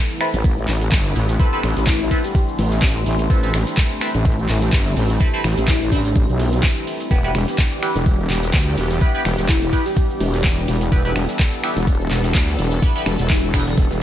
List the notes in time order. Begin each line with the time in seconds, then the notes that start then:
Already playing: E3 A3 B3 D4 E4 G4 C6
0.10 closed hi-hat, shaker
0.20 C4 E4 A4 B4, finger snap, closed hi-hat, open hi-hat, ride
0.34 A1, closed hi-hat, shaker
0.44 kick, closed hi-hat, ride, shaker
0.58 shaker
0.68 A1, clap, closed hi-hat, open hi-hat, ride
0.81 closed hi-hat, shaker
0.91 G1, kick, snare, clap, closed hi-hat, ride, shaker
1.06 snare, shaker
1.16 A1, closed hi-hat, open hi-hat, ride
1.29 closed hi-hat, shaker
1.40 C4 E4 A4 B4, kick, closed hi-hat, ride, shaker
1.53 C4 E4 A4 B4, closed hi-hat, shaker
1.63 A1, finger snap, closed hi-hat, open hi-hat, ride
1.77 A1, snare, closed hi-hat, shaker
1.87 E4, kick, snare, clap, closed hi-hat, ride, shaker
2.00 closed hi-hat, shaker
2.11 C4 E4 A4 B4, kick, closed hi-hat, open hi-hat, ride
2.24 G4, snare, closed hi-hat, shaker
2.35 G4, kick, closed hi-hat, ride, shaker
2.49 shaker
2.59 A1, open hi-hat, ride
2.72 snare, closed hi-hat, shaker
2.82 kick, snare, clap, closed hi-hat, shaker
2.96 shaker
3.06 A1, closed hi-hat, open hi-hat, ride
3.19 closed hi-hat, shaker
3.30 A1 C4 E4 A4 B4, kick, closed hi-hat, ride, shaker
3.43 C4 E4 A4 B4, closed hi-hat, shaker
3.54 A1, finger snap, closed hi-hat, open hi-hat, ride
3.67 snare, closed hi-hat, shaker
3.77 kick, snare, clap, closed hi-hat, ride, shaker
3.91 closed hi-hat, shaker
4.01 C4 E4 A4 B4, finger snap, closed hi-hat, open hi-hat, ride
4.15 A1, closed hi-hat, shaker
4.25 kick, closed hi-hat, ride, shaker
4.39 shaker
4.49 A1, clap, closed hi-hat, open hi-hat, ride
4.62 closed hi-hat, shaker
4.72 G1, kick, snare, clap, closed hi-hat, ride, shaker
4.86 snare, shaker
4.97 A1, closed hi-hat, open hi-hat, ride
5.10 closed hi-hat, shaker
5.20 C4 E4 A4 B4, kick, closed hi-hat, ride, shaker
5.34 C4 E4 A4 B4, closed hi-hat, shaker
5.44 A1, finger snap, closed hi-hat, open hi-hat, ride
5.57 A1, snare, closed hi-hat, shaker
5.68 E4, kick, snare, clap, closed hi-hat, ride, shaker
5.81 closed hi-hat, shaker
5.92 A1 C4 D4 E4 A4 B4, kick, closed hi-hat, open hi-hat, ride
6.05 D4, snare, closed hi-hat, shaker
6.16 A1, kick, closed hi-hat, ride, shaker
6.29 B1, shaker
6.40 open hi-hat, ride
6.53 snare, closed hi-hat, shaker
6.63 kick, snare, clap, closed hi-hat, ride, shaker
6.77 shaker
6.87 closed hi-hat, open hi-hat, ride
7.00 closed hi-hat, shaker
7.11 E1 E3 G3 B3 E4 G4 B4, kick, closed hi-hat, ride, shaker
7.22 B3 E4 G4 B4, closed hi-hat, shaker
7.35 E1, finger snap, closed hi-hat, open hi-hat, ride
7.48 snare, closed hi-hat, shaker
7.58 kick, snare, clap, closed hi-hat, ride, shaker
7.72 closed hi-hat, shaker
7.82 B3 E4 G4 B4, finger snap, closed hi-hat, open hi-hat, ride
7.95 E1, closed hi-hat, shaker
8.06 kick, closed hi-hat, ride, shaker
8.20 shaker
8.30 E1, clap, closed hi-hat, open hi-hat, ride
8.43 closed hi-hat, shaker
8.54 D2, kick, snare, clap, closed hi-hat, ride, shaker
8.67 snare, shaker
8.78 E1, closed hi-hat, open hi-hat, ride
8.91 closed hi-hat, shaker
9.01 B3 E4 G4 B4, kick, closed hi-hat, ride, shaker
9.14 B3 E4 G4 B4, closed hi-hat, shaker
9.25 E1, finger snap, closed hi-hat, open hi-hat, ride
9.38 E1, snare, closed hi-hat, shaker
9.49 E4, kick, snare, clap, closed hi-hat, ride, shaker
9.62 closed hi-hat, shaker
9.73 B3 E4 G4 B4, kick, closed hi-hat, open hi-hat, ride
9.86 G4, snare, closed hi-hat, shaker
9.96 G4, kick, closed hi-hat, ride, shaker
10.10 shaker
10.20 E1, open hi-hat, ride
10.34 snare, closed hi-hat, shaker
10.44 kick, snare, clap, closed hi-hat, ride, shaker
10.58 shaker
10.68 E1, closed hi-hat, open hi-hat, ride
10.81 closed hi-hat, shaker
10.92 E1 B3 E4 G4 A4 B4, kick, closed hi-hat, ride, shaker
11.05 B3 E4 G4 B4, closed hi-hat, shaker
11.15 E1, finger snap, closed hi-hat, open hi-hat, ride
11.29 snare, closed hi-hat, shaker
11.39 kick, snare, clap, closed hi-hat, ride, shaker
11.53 closed hi-hat, shaker
11.63 B3 E4 G4 B4, finger snap, closed hi-hat, open hi-hat, ride
11.76 E1, closed hi-hat, shaker
11.84 A4, kick, ride
11.88 closed hi-hat, shaker
12.01 shaker
12.11 E1, snare, clap, closed hi-hat, open hi-hat, ride
12.24 snare, closed hi-hat, shaker
12.34 D2, kick, snare, clap, closed hi-hat, ride, shaker
12.48 snare, shaker
12.58 E1, closed hi-hat, open hi-hat, ride
12.72 closed hi-hat, shaker
12.82 B3 E4 G4 B4, kick, closed hi-hat, ride, shaker
12.96 B3 E4 G4 B4, closed hi-hat, shaker
13.06 E1, finger snap, closed hi-hat, open hi-hat, ride
13.19 E1, snare, closed hi-hat, shaker
13.30 E4, kick, snare, clap, closed hi-hat, ride, shaker
13.43 closed hi-hat, shaker
13.54 E1 B3 D4 E4 G4 B4, finger snap, kick, snare, closed hi-hat, open hi-hat, ride
13.67 D4, snare, closed hi-hat, shaker
13.78 E1, kick, snare, closed hi-hat, ride, shaker
13.91 E1, snare, closed hi-hat, shaker